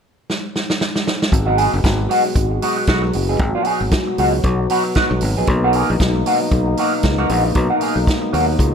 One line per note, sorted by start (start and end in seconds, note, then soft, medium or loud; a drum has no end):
0.30 snare medium
0.56 snare medium
0.70 snare medium
0.81 snare medium
0.96 snare medium
1.07 snare medium
1.22 snare medium
1.32 1.67 G#1 loud
1.32 8.74 B2 medium
1.32 3.38 G#3 medium
1.32 5.43 F#4 medium
1.32 muted clean electric guitar stroke soft
1.32 kick loud
1.32 closed hi-hat medium
1.46 1.56 F#3 medium
1.46 1.56 B3 medium
1.46 1.57 D#4 medium
1.46 1.58 F#4 medium
1.57 1.75 F#3 medium
1.57 1.72 B3 medium
1.57 1.72 D#4 medium
1.57 1.72 G#4 medium
1.57 open hi-hat medium
1.72 1.83 F#1 loud
1.72 muted clean electric guitar stroke soft
1.84 2.06 G#1 loud
1.84 kick loud
1.84 snare loud
1.84 closed hi-hat medium
1.99 muted clean electric guitar stroke soft
2.09 2.31 F#3 medium
2.09 2.25 B3 medium
2.09 2.25 D#4 medium
2.09 2.24 F#4 medium
2.09 open hi-hat medium
2.25 muted clean electric guitar stroke medium
2.35 2.58 G#1 medium
2.35 kick loud
2.35 closed hi-hat medium
2.51 muted clean electric guitar stroke soft
2.62 2.84 F#3 medium
2.62 2.78 B3 medium
2.62 2.77 D#4 medium
2.62 2.77 F#4 medium
2.62 open hi-hat medium
2.78 muted clean electric guitar stroke soft
2.87 3.10 B1 medium
2.87 3.10 F#3 medium
2.87 3.03 B3 medium
2.87 3.02 D#4 medium
2.87 3.02 F#4 medium
2.87 kick loud
2.87 snare loud
2.87 closed hi-hat medium
3.03 muted clean electric guitar stroke soft
3.13 3.37 F#1 medium
3.13 muted clean electric guitar stroke soft
3.13 open hi-hat medium
3.29 3.39 F#3 soft
3.29 3.40 B3 soft
3.29 3.40 D#4 medium
3.29 3.41 G#4 medium
3.39 3.52 G#1 loud
3.39 5.46 F#3 medium
3.39 muted clean electric guitar stroke soft
3.39 kick loud
3.39 closed hi-hat medium
3.55 3.65 F#3 medium
3.55 3.65 B3 medium
3.55 3.66 D#4 medium
3.55 3.66 F#4 medium
3.65 3.83 F#3 medium
3.65 3.81 B3 medium
3.65 3.80 D#4 medium
3.65 3.80 G#4 medium
3.65 open hi-hat medium
3.81 3.90 G#1 medium
3.81 muted clean electric guitar stroke soft
3.91 kick loud
3.91 snare loud
3.91 closed hi-hat medium
4.07 muted clean electric guitar stroke soft
4.18 4.40 C#2 medium
4.18 4.40 F#3 medium
4.18 4.33 B3 medium
4.18 4.33 D#4 medium
4.18 4.32 F#4 medium
4.18 open hi-hat medium
4.34 muted clean electric guitar stroke soft
4.44 4.66 B1 medium
4.44 kick loud
4.44 closed hi-hat medium
4.59 muted clean electric guitar stroke soft
4.70 4.91 F#3 medium
4.70 4.84 B3 medium
4.70 4.83 D#4 medium
4.70 4.83 F#4 medium
4.70 open hi-hat medium
4.84 muted clean electric guitar stroke soft
4.95 5.17 F#3 medium
4.95 5.10 B3 medium
4.95 5.09 D#4 medium
4.95 5.09 F#4 medium
4.95 kick loud
4.95 snare loud
4.95 closed hi-hat medium
5.10 5.20 B1 loud
5.10 muted clean electric guitar stroke soft
5.21 5.34 G#1 loud
5.21 muted clean electric guitar stroke soft
5.21 open hi-hat medium
5.37 5.46 A#1 medium
5.37 5.48 F#3 soft
5.37 5.49 B3 medium
5.37 5.48 D#4 medium
5.37 5.50 G#4 medium
5.47 5.82 B1 loud
5.47 8.74 A#3 medium
5.47 8.74 D#4 medium
5.47 muted clean electric guitar stroke soft
5.47 kick loud
5.47 closed hi-hat medium
5.64 5.74 F#3 medium
5.64 5.74 A#3 medium
5.64 5.75 D#4 medium
5.64 5.76 F#4 medium
5.73 5.92 F#3 medium
5.73 5.90 A#3 medium
5.73 5.90 D#4 medium
5.73 5.90 G#4 medium
5.73 open hi-hat medium
5.90 5.99 A#1 medium
5.90 muted clean electric guitar stroke medium
6.00 6.22 B1 medium
6.00 kick loud
6.00 snare loud
6.00 closed hi-hat medium
6.16 muted clean electric guitar stroke soft
6.26 6.47 F#3 medium
6.26 6.41 A#3 medium
6.26 6.40 D#4 medium
6.26 6.40 F#4 medium
6.26 open hi-hat medium
6.41 muted clean electric guitar stroke soft
6.51 6.74 B1 medium
6.51 kick loud
6.51 closed hi-hat medium
6.68 muted clean electric guitar stroke soft
6.77 6.99 F#3 medium
6.77 6.94 A#3 medium
6.77 6.93 D#4 medium
6.77 6.93 F#4 medium
6.77 open hi-hat medium
6.94 muted clean electric guitar stroke soft
7.03 7.26 C#2 medium
7.03 muted clean electric guitar stroke soft
7.03 kick medium
7.03 snare loud
7.03 closed hi-hat medium
7.18 7.30 F#3 medium
7.18 7.30 A#3 medium
7.18 7.31 D#4 medium
7.18 7.31 F#4 medium
7.29 7.51 A#1 medium
7.29 7.47 F#3 medium
7.29 7.44 A#3 medium
7.29 7.44 D#4 medium
7.29 7.44 F#4 medium
7.29 open hi-hat medium
7.45 muted clean electric guitar stroke soft
7.55 7.68 B1 loud
7.55 muted clean electric guitar stroke soft
7.55 kick loud
7.55 closed hi-hat medium
7.70 7.80 F#3 medium
7.70 7.81 A#3 medium
7.70 7.81 D#4 medium
7.70 7.82 F#4 medium
7.81 7.99 F#3 medium
7.81 7.96 A#3 medium
7.81 7.96 D#4 medium
7.81 7.96 G#4 medium
7.81 open hi-hat medium
7.96 8.05 B1 medium
7.96 muted clean electric guitar stroke soft
8.07 kick loud
8.07 snare medium
8.07 closed hi-hat medium
8.21 muted clean electric guitar stroke soft
8.33 8.55 D#2 medium
8.33 8.54 F#3 medium
8.33 8.47 A#3 medium
8.33 8.47 D#4 medium
8.33 8.46 F#4 medium
8.33 open hi-hat medium
8.47 muted clean electric guitar stroke soft
8.59 8.74 C#2 medium
8.59 kick loud
8.59 closed hi-hat medium